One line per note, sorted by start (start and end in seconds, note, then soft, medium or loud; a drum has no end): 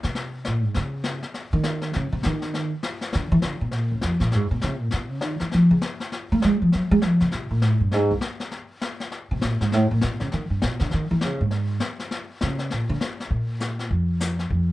0.03 0.42 C3 medium
0.03 snare soft
0.15 brush sweep medium
0.15 snare soft
0.45 0.63 A#2 medium
0.45 snare medium
0.63 0.74 G#2 medium
0.74 1.20 C#3 medium
0.74 brush sweep soft
0.74 snare soft
1.04 snare medium
1.22 snare soft
1.34 brush sweep soft
1.34 snare soft
1.53 1.91 D#3 loud
1.63 snare medium
1.82 snare soft
1.93 2.12 C#3 medium
1.93 brush sweep medium
1.93 snare soft
2.12 2.23 C3 medium
2.23 2.70 D#3 medium
2.23 snare medium
2.42 snare soft
2.54 brush sweep soft
2.54 snare soft
2.83 snare medium
3.01 snare soft
3.13 3.31 D3 medium
3.13 brush sweep medium
3.13 snare medium
3.32 3.43 E3 loud
3.42 3.61 D3 medium
3.42 snare medium
3.61 3.74 B2 medium
3.71 3.91 A#2 medium
3.71 brush sweep soft
3.71 snare soft
3.91 4.02 C#2 medium
4.01 4.20 F2 medium
4.01 snare medium
4.20 4.34 A#2 medium
4.20 snare soft
4.32 4.50 G#2 medium
4.32 brush sweep soft
4.32 snare soft
4.51 4.62 B2 medium
4.61 4.80 C#3 medium
4.61 snare medium
4.80 4.92 A#2 medium
4.91 5.11 B2 medium
4.91 brush sweep soft
4.91 snare soft
5.11 5.23 C#3 medium
5.21 5.40 D#3 medium
5.21 snare medium
5.40 5.52 E3 medium
5.40 snare soft
5.51 5.70 F3 medium
5.51 brush sweep soft
5.51 snare soft
5.71 5.78 C#3 medium
5.81 snare medium
6.00 snare soft
6.12 brush sweep soft
6.12 snare soft
6.32 6.43 A#3 medium
6.42 6.61 G#3 loud
6.42 snare medium
6.62 6.72 F3 medium
6.72 6.91 F#3 medium
6.72 brush sweep soft
6.72 snare soft
6.91 7.02 G#3 loud
7.02 7.21 F3 medium
7.02 snare medium
7.20 7.32 C#3 medium
7.20 snare soft
7.31 7.50 C3 medium
7.31 brush sweep medium
7.31 snare soft
7.51 7.63 A#2 medium
7.62 7.80 A2 medium
7.62 snare medium
7.81 7.94 G2 medium
7.92 8.10 G#2 medium
7.92 brush sweep soft
7.92 snare soft
8.11 8.18 C2 medium
8.21 snare medium
8.40 snare soft
8.51 brush sweep soft
8.51 snare soft
8.81 snare medium
9.00 snare soft
9.12 brush sweep medium
9.12 snare soft
9.31 9.42 C3 medium
9.41 9.60 A#2 medium
9.41 snare medium
9.60 9.74 G#2 medium
9.60 snare soft
9.72 9.90 A2 medium
9.72 brush sweep soft
9.72 snare soft
9.91 10.02 A#2 medium
10.01 10.20 B2 medium
10.01 snare medium
10.20 10.32 C#3 medium
10.20 snare soft
10.32 10.49 D#3 medium
10.32 brush sweep medium
10.32 snare soft
10.50 10.61 G2 medium
10.62 10.80 B2 medium
10.62 snare medium
10.80 10.92 D3 medium
10.80 snare soft
10.91 11.10 D#3 medium
10.91 brush sweep soft
10.91 snare soft
11.11 11.24 E3 medium
11.21 11.40 C#3 medium
11.21 snare medium
11.41 11.79 G#2 medium
11.51 brush sweep soft
11.51 snare soft
11.80 snare medium
11.99 snare soft
12.11 brush sweep medium
12.11 snare medium
12.41 12.70 C#3 medium
12.41 snare medium
12.59 snare soft
12.70 12.89 A#2 medium
12.70 brush sweep medium
12.70 snare medium
12.89 12.96 D3 loud
13.01 snare medium
13.20 snare soft
13.31 13.88 A#2 medium
13.31 brush sweep soft
13.31 kick soft
13.60 snare medium
13.60 hi-hat pedal soft
13.79 snare soft
13.91 14.48 F2 medium
13.91 brush sweep soft
13.91 kick soft
14.20 snare medium
14.20 hi-hat pedal medium
14.39 snare soft
14.50 14.72 F2 medium
14.50 brush sweep soft
14.50 kick soft